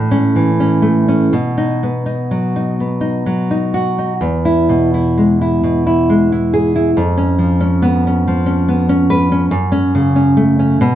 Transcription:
Already playing: A2
0.11 C#4
0.36 E3
0.60 C#4
0.82 A3
1.08 C#4
1.33 B2
1.58 D#4
1.83 B3
2.06 D#4
2.31 F#3
2.56 D#4
2.80 B3
3.01 D#4
3.26 F#3
3.51 D#4
3.74 F#4
3.98 D#4
4.21 E2
4.45 E4
4.69 B2
4.94 E4
5.17 G#3
5.42 E4
5.63 B2
5.87 E4
6.09 G#3
6.32 E4
6.54 G#4
6.76 E4
6.97 F2
7.17 C#4
7.39 F3
7.60 C#4
7.82 B3
8.07 C#4
8.28 F3
8.46 C#4
8.68 B3
8.89 C#4
9.10 B4
9.32 C#4
9.51 F#2
9.72 C#4
9.95 C#3
10.16 C#4
10.37 A3
10.59 C#4
10.81 B2

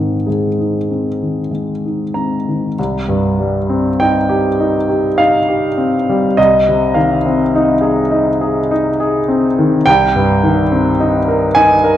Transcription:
Already playing: G#2 D#3 C4 D#4 A#4
0.26 G#3 G#4
0.59 D#4
0.91 C4
1.22 D#3
1.51 G#3
1.85 D#4
2.14 C4 A#5
2.48 D#3
2.79 C2
3.09 G2
3.40 G3
3.69 C4
4.00 D#4 G5
4.29 G4
4.60 D#4
4.89 G4
5.18 D#4 F5
5.48 G4
5.77 C4
6.09 G3
6.37 C2 D#5
6.69 C3
6.94 D#3 F5
7.26 C4
7.55 D#4
7.81 G#4
8.11 D#4
8.41 G#4
8.71 D#4
9.00 G#4
9.28 C4
9.59 D#3
9.86 C2 G5
10.16 G2
10.43 D#3
10.72 C4
11.00 D#4
11.28 A#4
11.55 D#4 G#5
11.84 A#4

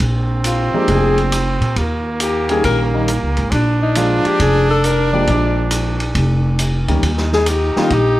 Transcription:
0.00 A#1 C4, kick, ride
0.44 F4, hi-hat pedal, ride
0.73 F3 G#3 A#3 D4 G4 G#4, muted upright bass stroke
0.88 F1 G#4, kick, ride
1.18 ride
1.32 hi-hat pedal, ride
1.61 A#2, ride
1.76 D#2 A#3, kick, ride
2.20 G4, hi-hat pedal, ride
2.49 D#3 G3 A#3 C#4 G4 G#4, ride
2.64 A#1 A#4, kick, ride
2.93 D#3 G3 A#3 C#4 D#4
3.08 hi-hat pedal, ride
3.23 C#2
3.37 G#1, ride
3.51 A#1 D4, kick, ride
3.82 D#4
3.95 F3 G#3 A#3 D4 F4 G#4, hi-hat pedal, ride
4.25 G4, muted upright bass stroke, ride
4.40 F1 G#4, kick, ride
4.70 A4
4.84 A#4, hi-hat pedal, ride
5.13 F3 G#3 A#3 D4 G4 D5
5.27 A#1 F3 G#3 A#3 D4 G#4, kick, ride
5.71 hi-hat pedal, ride
6.00 ride
6.15 F1, kick, ride
6.59 hi-hat pedal, ride
6.88 D2 D#3 G3 A#3 C#4 G4, ride
7.03 D#2 D#4, kick, ride
7.17 snare
7.32 G#4, snare
7.46 G4, hi-hat pedal, ride
7.76 D#3 G3 A#3 C#4 F4 G4, muted upright bass stroke, snare
7.90 A#1 G4, kick, ride

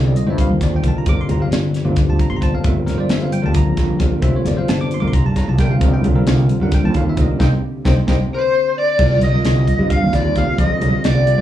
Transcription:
Already playing: C2 D3 G3 A#3 C4 F4 A4 D#5
0.04 D5, muted conga
0.16 D#5, closed hi-hat
0.26 G2 D3 G3 C4 F4 C5 E5, high conga, low conga
0.38 F5, kick, closed hi-hat
0.49 D#2 A#4
0.61 D5, kick, snare, closed hi-hat, muted conga
0.76 G5
0.83 D3 G3 C4 F4 A#4, kick, closed hi-hat, high conga
0.88 A5
0.94 A#5, muted fretless electric bass stroke
1.06 G1 D3 F3 G3 A#3 C4 F4 G4 A#4 D6, kick, closed hi-hat, muted conga, low conga
1.21 C6
1.29 G1 A#5, closed hi-hat, high conga, low conga
1.40 D3 G3 C4 F4 G4 F5, muted fretless electric bass stroke
1.51 G1, snare, closed hi-hat
1.63 muted conga, low conga
1.74 snare, closed hi-hat
1.84 G1 D3 G3 C4 F4 G4, high conga, low conga
1.96 kick, snare, closed hi-hat
2.08 D2 A5
2.19 A#5, kick, closed hi-hat, high conga
2.30 G1 C6, high conga
2.36 A#5
2.41 D3 G3 C4 F4 C5 A5, kick, closed hi-hat, low conga
2.54 F5, low conga
2.64 G1 D3 G3 C4 F4 A#4 E5, kick, closed hi-hat, muted conga
2.76 G4
2.86 G1 A#4, snare, closed hi-hat, high conga, low conga
2.98 D3 G3 C4 F4 C5 D5
3.09 G1 E5, snare, closed hi-hat
3.21 F5, muted conga
3.32 G5, closed hi-hat
3.42 D2 D3 G3 C4 D4 F4 A#4 A5, high conga, low conga
3.54 A#5, kick, closed hi-hat
3.66 A#1
3.77 kick, snare, closed hi-hat, muted conga
3.99 D3 G3 C4 F4 A#4, kick, snare, closed hi-hat, high conga, low conga
4.11 muted fretless electric bass stroke
4.22 F1 D3 G3 C4 F4 C5 E5, kick, closed hi-hat, muted conga
4.36 C#5
4.45 G1 D5, snare, closed hi-hat, high conga, low conga
4.56 D3 G3 C4 F4 C5 F5
4.68 G1 A5, snare, closed hi-hat
4.80 D6, muted conga
4.91 C6, closed hi-hat
5.00 G1 D3 G3 C4 F4 A#4 D6, high conga, low conga
5.07 C6
5.13 C2 D3 C4 F4 A#5, kick, closed hi-hat
5.24 G2 A5
5.36 A#5, kick, snare, closed hi-hat, muted conga
5.48 C2 A5
5.58 D3 G3 C4 F4 A#4 G5, kick, snare, closed hi-hat, high conga, low conga
5.71 F5
5.81 C2 D3 G3 C4 F4 A#4 D#5, kick, closed hi-hat, muted conga
5.94 G5
6.04 C2, closed hi-hat, high conga, low conga
6.15 D3 G3 C4 F4 A#4
6.27 C2, snare, closed hi-hat
6.37 muted conga
6.49 closed hi-hat
6.60 G2 D3 G3 C4 F4 A#4 F#5, high conga, low conga
6.72 G4 G5, kick, snare, closed hi-hat
6.84 D#2 A5
6.94 F5, kick, closed hi-hat, muted conga
7.09 E5
7.17 D3 G3 C4 F4 A#4, kick, closed hi-hat, high conga, low conga
7.21 D#5
7.29 G4, muted fretless electric bass stroke
7.39 C2 A#3 C4 D#4 C5 D#5 G5, kick, snare, high conga
7.85 C2 A#3 C4 D#4 C5 D#5 G5, kick, snare, high conga
8.07 C2 A#3 C4 D#4 C5 D#5 G5, kick, snare, high conga
8.33 C5
8.77 D5
8.99 C2 D3 G3 A#3 C4 F4 A#4, kick, crash, muted conga
9.21 C2 D#5, closed hi-hat, high conga
9.34 D3 G3 C4 F4 A#4
9.44 C2, snare, closed hi-hat
9.56 muted conga
9.67 kick, closed hi-hat
9.78 G2 D3 G3 C4 F4 G4, high conga, low conga
9.89 F5, kick, closed hi-hat
10.03 D#2
10.13 D5, kick, snare, closed hi-hat, muted conga
10.35 D3 G3 C4 F4 G4 F5, kick, closed hi-hat, high conga, low conga
10.47 muted fretless electric bass stroke
10.58 A#1 D3 G3 C4 F4 A4 D#5, kick, closed hi-hat, muted conga
10.81 C2, closed hi-hat, high conga, low conga
10.92 D3 G3 C4 F4 G4, muted fretless electric bass stroke
11.04 C2 D5, snare, closed hi-hat
11.15 muted conga
11.27 closed hi-hat
11.38 D3 G3 F4 C5, high conga, low conga

